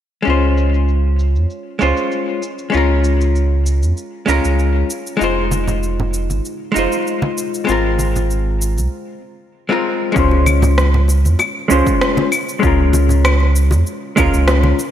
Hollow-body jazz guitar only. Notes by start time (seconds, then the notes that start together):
0.22 G#3 C#4
0.27 F4 C5
1.79 G#3 C#4 F4 C5
2.70 G#3 C#4
2.74 F4 A#4
4.26 G#3 C#4 F4 A#4
5.17 G#3 D#4
5.21 F4 C5
6.72 G#3 D#4
6.76 F4 C5
7.65 G#3 C4
7.70 F4 A#4
9.69 G#3 C4 F4 A#4
10.12 G#3 C#4
10.17 F4 C5
11.68 G#3 C#4 F4 C5
12.60 G#3 C#4
12.64 F4 A#4
14.16 G#3 C#4 F4 A#4